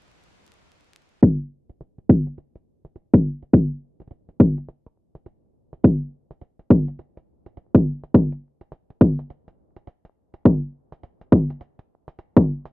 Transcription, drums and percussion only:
1.23 kick loud
1.23 closed hi-hat medium
1.69 closed hi-hat medium
1.81 closed hi-hat medium
1.98 closed hi-hat soft
2.09 kick loud
2.27 closed hi-hat soft
2.38 closed hi-hat medium
2.56 closed hi-hat soft
2.85 closed hi-hat soft
2.96 closed hi-hat medium
3.14 kick loud
3.43 closed hi-hat medium
3.53 kick loud
3.53 closed hi-hat medium
4.00 closed hi-hat soft
4.02 closed hi-hat soft
4.07 closed hi-hat soft
4.11 closed hi-hat medium
4.29 closed hi-hat soft
4.40 kick loud
4.58 closed hi-hat soft
4.69 closed hi-hat medium
4.87 closed hi-hat soft
5.15 closed hi-hat medium
5.26 closed hi-hat medium
5.73 closed hi-hat medium
5.84 kick loud
5.84 closed hi-hat medium
6.31 closed hi-hat medium
6.41 closed hi-hat medium
6.59 closed hi-hat soft
6.70 kick loud
6.88 closed hi-hat soft
6.99 closed hi-hat medium
7.17 closed hi-hat soft
7.46 closed hi-hat soft
7.57 closed hi-hat medium
7.75 kick loud
8.04 closed hi-hat medium
8.14 kick loud
8.14 closed hi-hat medium
8.32 closed hi-hat soft
8.61 closed hi-hat soft
8.72 closed hi-hat medium
8.90 closed hi-hat soft
9.01 kick loud
9.19 closed hi-hat soft
9.30 closed hi-hat medium
9.48 closed hi-hat soft
9.76 closed hi-hat soft
9.87 closed hi-hat medium
10.05 closed hi-hat soft
10.34 closed hi-hat soft
10.45 kick loud
10.45 closed hi-hat medium
10.92 closed hi-hat soft
11.03 closed hi-hat medium
11.21 closed hi-hat soft
11.32 kick loud
11.50 closed hi-hat soft
11.61 closed hi-hat medium
11.79 closed hi-hat soft
12.08 closed hi-hat soft
12.19 closed hi-hat medium
12.37 kick medium
12.65 closed hi-hat soft

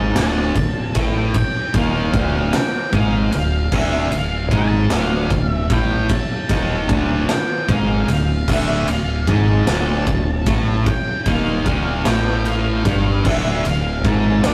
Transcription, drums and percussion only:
0.16 snare loud
0.16 ride loud
0.55 kick medium
0.55 ride medium
0.95 kick loud
0.95 ride medium
1.34 kick loud
1.34 ride loud
1.74 kick loud
1.74 ride medium
2.14 kick loud
2.14 ride medium
2.53 snare loud
2.53 ride medium
2.93 kick loud
2.93 ride medium
3.32 ride medium
3.72 kick loud
3.72 crash loud
4.12 ride medium
4.51 kick loud
4.51 ride medium
4.90 snare loud
4.90 ride loud
5.30 kick medium
5.30 ride medium
5.70 kick loud
5.70 ride medium
6.09 kick loud
6.09 ride loud
6.49 kick loud
6.49 ride medium
6.89 kick loud
6.89 ride medium
7.29 snare loud
7.29 ride loud
7.69 kick loud
7.69 ride medium
8.08 ride medium
8.48 kick loud
8.48 crash loud
8.88 ride medium
9.27 kick loud
9.27 ride medium
9.67 snare loud
9.67 ride loud
10.07 kick loud
10.07 ride medium
10.46 kick loud
10.46 ride medium
10.86 kick loud
10.86 ride medium
11.26 kick loud
11.26 ride medium
11.66 kick loud
11.66 ride medium
12.05 snare loud
12.05 ride loud
12.45 ride medium
12.85 kick loud
12.85 ride medium
13.25 kick loud
13.25 crash loud
13.65 ride medium
14.04 kick loud
14.04 ride medium
14.44 snare loud
14.44 ride loud

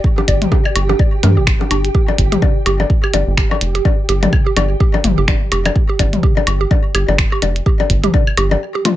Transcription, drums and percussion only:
0.04 kick loud
0.18 low bongo soft
0.28 kick medium
0.28 closed hi-hat medium
0.42 closed hi-hat soft
0.42 mid tom medium
0.52 kick loud
0.52 low bongo soft
0.65 high woodblock medium
0.76 closed hi-hat loud
0.76 high woodblock medium
0.89 low bongo soft
0.99 kick loud
1.23 closed hi-hat loud
1.23 mid tom medium
1.23 low bongo soft
1.47 finger snap loud
1.47 kick loud
1.61 low bongo soft
1.71 closed hi-hat medium
1.71 high woodblock medium
1.85 closed hi-hat soft
1.95 kick loud
2.08 low bongo soft
2.18 kick medium
2.18 closed hi-hat medium
2.32 closed hi-hat soft
2.32 mid tom medium
2.42 kick loud
2.42 low bongo soft
2.66 closed hi-hat medium
2.66 high woodblock medium
2.80 low bongo soft
2.90 kick loud
3.04 high woodblock medium
3.14 closed hi-hat medium
3.14 low bongo soft
3.37 finger snap medium
3.37 kick loud
3.51 low bongo soft
3.51 high woodblock medium
3.61 closed hi-hat medium
3.75 closed hi-hat soft
3.85 kick loud
3.85 low bongo soft
4.09 closed hi-hat medium
4.23 closed hi-hat soft
4.23 mid tom medium
4.23 low bongo soft
4.33 kick loud
4.33 high woodblock medium
4.57 closed hi-hat medium
4.57 low bongo soft
4.57 high woodblock medium
4.80 kick loud
4.94 low bongo soft
5.04 closed hi-hat medium
5.04 mid tom medium
5.28 finger snap loud
5.28 kick loud
5.28 low bongo soft
5.52 closed hi-hat medium
5.52 high woodblock medium
5.66 closed hi-hat soft
5.66 low bongo soft
5.66 high woodblock medium
5.76 kick loud
5.99 kick medium
5.99 closed hi-hat medium
5.99 low bongo soft
6.13 closed hi-hat soft
6.13 mid tom medium
6.23 kick loud
6.37 low bongo soft
6.47 closed hi-hat medium
6.47 high woodblock medium
6.71 kick loud
6.71 low bongo soft
6.95 closed hi-hat medium
6.95 high woodblock medium
7.08 low bongo soft
7.18 finger snap loud
7.18 kick loud
7.32 high woodblock medium
7.42 closed hi-hat medium
7.42 low bongo soft
7.56 closed hi-hat soft
7.66 kick loud
7.80 low bongo soft
7.90 kick medium
7.90 closed hi-hat medium
8.04 closed hi-hat soft
8.04 mid tom medium
8.14 kick loud
8.14 low bongo soft
8.27 high woodblock medium
8.37 closed hi-hat medium
8.37 high woodblock medium
8.51 low bongo soft
8.85 closed hi-hat medium
8.85 mid tom medium
8.85 low bongo soft

